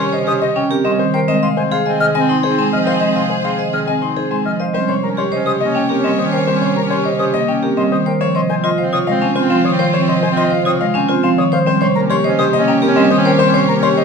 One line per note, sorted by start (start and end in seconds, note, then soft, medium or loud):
0.00 0.14 C#4 medium
0.00 0.17 G4 medium
0.00 1.10 G4 medium
0.00 0.17 C#5 loud
0.00 1.10 C#5 medium
0.13 0.32 C#3 medium
0.13 0.32 C5 medium
0.13 0.32 D#5 medium
0.23 0.44 C#4 medium
0.27 0.46 C3 medium
0.27 0.46 G4 medium
0.27 0.46 C5 medium
0.27 0.33 D#6 loud
0.42 0.60 D#5 loud
0.42 0.48 D#5 medium
0.53 0.75 C#4 medium
0.53 0.75 G5 medium
0.70 0.89 C4 medium
0.70 0.89 G4 loud
0.70 0.89 A#4 medium
0.84 1.04 G3 loud
0.84 1.04 C4 loud
0.84 1.05 C#4 medium
0.84 1.04 D#5 medium
0.84 0.91 C6 medium
0.99 1.18 D#3 medium
0.99 1.18 C5 medium
1.14 1.33 A#4 medium
1.14 1.33 C5 loud
1.14 1.20 G5 loud
1.28 1.47 G#3 loud
1.28 1.47 C4 loud
1.28 1.50 C4 soft
1.28 4.56 G#4 medium
1.28 4.56 C5 medium
1.28 1.47 D#5 loud
1.42 1.61 C3 medium
1.42 1.61 D#5 medium
1.42 1.62 F5 medium
1.42 1.48 C6 medium
1.57 1.80 C4 medium
1.57 1.76 C5 medium
1.57 1.63 G#5 loud
1.71 1.90 G#4 loud
1.71 1.90 F5 loud
1.71 1.77 C6 medium
1.86 2.05 D#3 medium
1.86 2.10 C4 medium
1.86 2.05 D#5 medium
1.86 2.05 G#5 medium
2.00 2.19 C3 medium
2.00 2.19 G#4 medium
2.00 2.19 D#5 medium
2.00 2.06 F6 loud
2.15 2.34 C4 loud
2.15 2.21 D#5 medium
2.15 2.34 G#5 loud
2.19 2.40 C4 loud
2.29 2.48 D#4 loud
2.29 2.48 C6 medium
2.43 2.62 G#4 loud
2.43 2.62 C5 medium
2.49 2.70 C4 medium
2.58 2.77 G#3 loud
2.58 2.77 C4 loud
2.58 2.77 G#5 medium
2.58 2.64 C6 medium
2.72 2.91 F3 medium
2.72 2.91 D#5 medium
2.72 2.79 F6 medium
2.80 3.01 C4 medium
2.87 3.06 C5 medium
2.87 3.06 D#5 medium
2.87 2.93 F5 medium
3.01 3.20 G#3 medium
3.01 3.20 C4 medium
3.01 3.20 D#5 medium
3.10 3.31 C4 medium
3.16 3.35 C3 medium
3.16 3.35 D#5 medium
3.16 3.34 F5 medium
3.16 3.22 C6 medium
3.30 3.49 C5 medium
3.30 3.36 G#5 medium
3.40 3.61 C4 medium
3.44 3.63 G#4 medium
3.44 3.63 F5 medium
3.44 3.51 C6 medium
3.59 3.78 D#3 medium
3.59 3.78 D#5 medium
3.59 3.78 G#5 medium
3.70 3.92 C3 medium
3.70 3.91 C4 medium
3.70 3.92 G#4 medium
3.70 3.92 D#5 medium
3.70 3.80 F6 medium
3.87 4.07 C4 medium
3.87 3.94 D#5 medium
3.87 4.06 G#5 loud
4.00 4.21 C4 medium
4.00 4.21 D#4 medium
4.00 4.21 C6 medium
4.16 4.35 D#4 medium
4.16 4.35 G#4 medium
4.16 4.36 C5 medium
4.30 4.50 G#3 medium
4.30 4.51 C4 soft
4.30 4.50 C4 medium
4.30 4.50 G#5 medium
4.30 4.37 C6 medium
4.45 4.64 F3 medium
4.45 4.64 D#5 medium
4.45 4.51 F6 medium
4.60 4.73 C5 medium
4.60 4.79 D#5 medium
4.60 4.66 F5 medium
4.74 4.93 G3 loud
4.74 4.93 C4 medium
4.74 4.96 C#4 soft
4.74 8.02 G4 medium
4.74 4.93 C5 loud
4.74 8.02 C#5 medium
4.88 5.07 C3 medium
4.88 5.07 C5 medium
4.88 5.08 C#5 medium
4.88 4.95 C6 medium
5.03 5.26 C#4 medium
5.03 5.22 A#4 medium
5.03 5.09 A#5 medium
5.17 5.36 G4 medium
5.17 5.37 C#5 medium
5.17 5.23 C6 medium
5.31 5.51 C#3 medium
5.31 5.56 C#4 medium
5.31 5.51 C5 medium
5.31 5.51 D#5 medium
5.46 5.65 C3 medium
5.46 5.65 G4 medium
5.46 5.65 C5 medium
5.46 5.52 D#6 loud
5.61 5.80 A#3 loud
5.61 5.80 D#5 medium
5.61 5.67 D#5 medium
5.65 5.86 C#4 medium
5.75 5.94 C#4 medium
5.75 5.94 G5 medium
5.89 6.09 C4 medium
5.89 6.08 G4 medium
5.89 6.09 A#4 medium
5.95 6.16 C#4 medium
6.04 6.23 G3 medium
6.04 6.23 C4 medium
6.04 6.23 D#5 medium
6.04 6.10 C6 medium
6.18 6.37 D#3 medium
6.18 6.37 C5 medium
6.18 6.24 D#6 medium
6.25 6.46 C#4 medium
6.32 6.52 A#4 medium
6.32 6.52 C5 medium
6.32 6.39 G5 medium
6.47 6.66 G3 loud
6.47 6.66 C4 medium
6.47 6.66 C5 medium
6.55 6.76 C#4 medium
6.62 6.81 C3 medium
6.62 6.81 C5 medium
6.62 6.81 C#5 medium
6.62 6.68 C6 medium
6.76 6.95 A#4 medium
6.76 6.82 A#5 loud
6.86 7.07 C#4 medium
6.90 7.09 G4 medium
6.90 7.09 C#5 medium
6.90 6.97 C6 medium
7.05 7.24 C#3 medium
7.05 7.24 C5 medium
7.05 7.24 D#5 medium
7.16 7.38 C3 medium
7.16 7.37 C#4 medium
7.16 7.38 G4 medium
7.16 7.38 C5 medium
7.16 7.25 D#6 medium
7.34 7.53 A#3 loud
7.34 7.53 D#5 loud
7.34 7.40 D#5 medium
7.46 7.67 C#4 medium
7.46 7.67 G5 medium
7.63 7.82 C4 medium
7.63 7.82 G4 loud
7.63 7.82 A#4 medium
7.76 7.96 G3 loud
7.76 7.96 C4 medium
7.76 7.97 C#4 soft
7.76 7.96 D#5 medium
7.76 7.83 C6 medium
7.92 8.11 D#3 medium
7.92 8.11 C5 medium
7.92 7.98 D#6 medium
8.06 8.25 A#4 medium
8.06 8.25 C5 loud
8.06 8.12 G5 loud
8.20 8.39 F3 loud
8.20 8.39 C4 medium
8.20 8.42 C4 soft
8.20 11.48 F4 medium
8.20 11.48 C5 medium
8.20 8.39 C#5 loud
8.35 8.54 C3 medium
8.35 8.54 C5 medium
8.35 8.54 D#5 medium
8.35 8.41 C6 medium
8.49 8.72 C4 medium
8.49 8.68 C5 medium
8.49 8.55 G#5 loud
8.64 8.83 F4 loud
8.64 8.83 D#5 medium
8.64 8.70 C6 medium
8.78 8.97 C#3 medium
8.78 9.02 C4 medium
8.78 8.97 C5 medium
8.78 8.97 F5 medium
8.93 9.12 C3 medium
8.93 9.11 F4 medium
8.93 9.12 C#5 medium
8.93 8.99 D#6 loud
9.07 9.26 G#3 loud
9.07 9.13 D#5 medium
9.07 9.26 F5 loud
9.11 9.32 C4 loud
9.21 9.40 C#4 medium
9.21 9.40 G#5 medium
9.36 9.55 C4 medium
9.36 9.55 F4 loud
9.36 9.55 C5 medium
9.41 9.62 C4 medium
9.50 9.69 F3 loud
9.50 9.69 C4 medium
9.50 9.69 F5 loud
9.50 9.57 C6 medium
9.65 9.84 D#3 medium
9.65 9.84 C#5 medium
9.65 9.71 D#6 medium
9.71 9.92 C4 medium
9.79 9.98 C5 loud
9.79 9.98 C5 medium
9.79 9.86 F5 medium
9.93 10.12 F3 loud
9.93 10.12 C4 medium
9.93 10.12 C#5 loud
10.01 10.22 C4 medium
10.08 10.27 C3 medium
10.08 10.27 C5 medium
10.08 10.27 D#5 medium
10.08 10.14 C6 medium
10.23 10.41 C5 medium
10.23 10.29 G#5 loud
10.32 10.53 C4 loud
10.36 10.56 F4 loud
10.36 10.56 D#5 loud
10.36 10.43 C6 medium
10.51 10.70 C#3 medium
10.51 10.70 C5 medium
10.51 10.70 F5 medium
10.62 10.85 C3 medium
10.62 10.83 C4 medium
10.62 10.84 F4 medium
10.62 10.72 D#6 loud
10.66 10.85 C#5 medium
10.80 10.99 G#3 loud
10.80 10.86 D#5 medium
10.80 10.99 F5 loud
10.93 11.13 C4 medium
10.93 11.13 C#4 loud
10.93 11.13 G#5 loud
11.09 11.28 C4 medium
11.09 11.28 F4 loud
11.09 11.28 C5 medium
11.22 11.42 F3 loud
11.22 11.43 C4 medium
11.22 11.42 C4 loud
11.22 11.42 F5 loud
11.22 11.30 C6 medium
11.38 11.57 D#3 loud
11.38 11.57 C#5 medium
11.38 11.44 D#6 medium
11.52 11.71 C5 loud
11.52 11.66 C5 medium
11.52 11.58 F5 loud
11.66 11.85 G3 loud
11.66 11.85 C4 medium
11.66 11.88 C#4 soft
11.66 14.04 G4 loud
11.66 11.86 C5 loud
11.66 14.04 C#5 medium
11.81 12.00 C3 medium
11.81 12.00 C5 medium
11.81 12.00 C#5 medium
11.81 11.87 C6 loud
11.95 12.14 A#3 medium
11.95 12.18 C#4 medium
11.95 12.14 A#4 medium
11.95 12.01 A#5 loud
12.10 12.29 G4 loud
12.10 12.29 C#5 loud
12.10 12.16 C6 medium
12.24 12.43 C#3 medium
12.24 12.48 C#4 medium
12.24 12.43 C5 loud
12.24 12.43 D#5 medium
12.39 12.58 C3 medium
12.39 12.58 G4 loud
12.39 12.58 C5 loud
12.39 12.45 D#6 loud
12.53 12.72 A#3 loud
12.53 12.59 D#5 medium
12.53 12.72 D#5 loud
12.57 12.79 C#4 loud
12.67 12.86 C#4 medium
12.67 12.87 G5 medium
12.67 12.73 A#5 medium
12.82 13.01 C4 loud
12.82 13.01 G4 loud
12.82 13.01 A#4 loud
12.88 13.09 C#4 loud
12.96 13.15 G3 loud
12.96 13.15 C4 loud
12.96 13.15 D#5 loud
12.96 13.02 C6 medium
13.10 13.30 D#3 loud
13.10 13.30 C5 medium
13.10 13.17 D#6 loud
13.18 13.39 C#4 loud
13.25 13.44 A#4 medium
13.25 13.44 C5 loud
13.25 13.31 G5 loud
13.39 13.59 G3 loud
13.39 13.58 C4 medium
13.39 13.58 C5 loud
13.48 13.69 C#4 medium
13.54 13.73 C3 loud
13.54 13.73 C5 loud
13.54 13.73 C#5 loud
13.54 13.60 C6 medium
13.68 13.87 A#3 medium
13.68 13.87 A#4 medium
13.68 13.74 A#5 loud
13.78 13.99 C#4 medium
13.83 14.02 G4 loud
13.83 14.02 C#5 loud
13.83 13.89 C6 medium
13.97 14.04 C#3 medium
13.97 14.04 C5 medium
13.97 14.04 D#5 medium